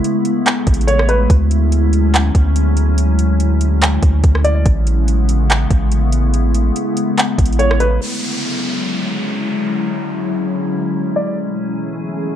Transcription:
Already playing: ambient pad C#3 G#3 A3 B3 E4
0.04 closed hi-hat
0.25 closed hi-hat
0.46 clap, closed hi-hat
0.67 808-style bass A1, kick, closed hi-hat
0.74 closed hi-hat
0.81 closed hi-hat
0.87 felt piano C#5, closed hi-hat
0.99 cross-stick
1.09 felt piano B4, closed hi-hat
1.30 808-style bass D2, ambient pad D3 F#3 C#4, kick, closed hi-hat
1.51 closed hi-hat
1.72 closed hi-hat
1.93 closed hi-hat
2.14 clap, closed hi-hat
2.35 808-style bass D2, kick, closed hi-hat
2.56 closed hi-hat
2.77 closed hi-hat
2.98 closed hi-hat
3.19 closed hi-hat
3.40 closed hi-hat
3.61 closed hi-hat
3.82 clap, closed hi-hat
4.03 808-style bass D2, kick, closed hi-hat
4.24 808-style bass D2, kick, closed hi-hat
4.35 cross-stick
4.44 felt piano D5, closed hi-hat
4.65 808-style bass A1, ambient pad C#3 G#3 A3 B3 E4, kick, closed hi-hat
4.87 closed hi-hat
5.08 closed hi-hat
5.29 closed hi-hat
5.50 clap, closed hi-hat
5.71 808-style bass A1, kick, closed hi-hat
5.92 closed hi-hat
6.12 closed hi-hat
6.34 closed hi-hat
6.54 closed hi-hat
6.76 closed hi-hat
6.97 closed hi-hat
7.18 clap, closed hi-hat
7.38 808-style bass A1, kick, closed hi-hat
7.46 closed hi-hat
7.52 closed hi-hat
7.59 felt piano C#5, closed hi-hat
7.71 cross-stick
7.80 felt piano B4, closed hi-hat
8.01 ambient pad D3 F#3 G#3 C#4 E4, downlifter
11.16 felt piano D5
11.37 ambient pad B2 E3 A3 G#4

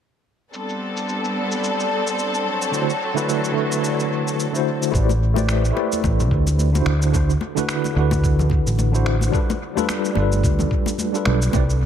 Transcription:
0.52 string section G3 B3 C4 D4 A4, shaker
0.69 shaker
0.97 shaker
1.09 shaker
1.24 shaker
1.52 shaker
1.64 shaker
1.80 shaker
2.07 shaker
2.19 shaker
2.34 shaker
2.45 string section F#3
2.62 shaker
2.71 tine electric piano D3 A3 E4 F#4 C5, shaker
2.90 shaker
3.14 tine electric piano D3 A3 E4 F#4 B4, shaker
3.29 shaker
3.45 shaker
3.51 tine electric piano D3 A3
3.56 tine electric piano E4 F#4 B4
3.72 shaker
3.84 shaker
4.00 shaker
4.28 shaker
4.40 shaker
4.52 tine electric piano D3 A3 E4 F#4 C5, shaker
4.83 shaker
4.91 fretless electric bass A1, tine electric piano A3 E4 G4 B4 C5 D5, kick, shaker
5.09 muted conga, shaker
5.34 tine electric piano A3 E4 G4 B4 C5, muted conga, high conga, shaker
5.38 tine electric piano D5
5.49 finger snap, shaker
5.65 shaker
5.72 tine electric piano A3 E4 G4
5.76 tine electric piano B4 C5 D5, muted conga
5.92 high conga, shaker
6.04 fretless electric bass A1, kick, muted conga, shaker
6.20 low conga, shaker
6.31 fretless electric bass D2, kick
6.47 muted conga, shaker
6.59 high conga, shaker
6.72 tine electric piano D3 D4 E4 F#4 C5, muted conga, shaker
6.86 fretless electric bass D2, finger snap
7.02 shaker
7.12 tine electric piano D3 D4 E4 F#4 C5, kick, muted conga, shaker
7.30 shaker
7.41 muted conga
7.55 tine electric piano D3 D4 E4 F#4 B4, high conga, shaker
7.69 finger snap, shaker
7.84 muted conga, shaker
7.93 fretless electric bass D2, tine electric piano D3 D4 E4
7.98 tine electric piano F#4 B4
8.11 kick, muted conga, shaker
8.24 kick, shaker
8.39 low conga, shaker
8.50 kick, muted conga
8.67 fretless electric bass A1, shaker
8.79 muted conga, shaker
8.92 tine electric piano D3 D4 E4 F#4 C5, shaker
9.06 finger snap
9.21 muted conga, shaker
9.31 tine electric piano G3 D4 F4 A4 B4, kick, shaker
9.50 muted conga, shaker
9.75 tine electric piano G3 D4 F4 A4 B4, high conga, shaker
9.89 finger snap, muted conga, shaker
10.05 shaker
10.13 fretless electric bass G1, tine electric piano G3 D4, muted conga
10.17 tine electric piano F4 A4 B4
10.32 high conga, shaker
10.43 fretless electric bass D2, kick, shaker
10.59 muted conga, low conga, shaker
10.71 kick
10.86 muted conga, shaker
10.98 high conga, shaker
11.13 tine electric piano G3 D4 F4 A4, shaker
11.17 tine electric piano B4
11.25 fretless electric bass B1, finger snap, muted conga
11.42 shaker
11.52 fretless electric bass C2, tine electric piano C3 C4 E4 B4 D5, kick, muted conga, shaker
11.70 shaker

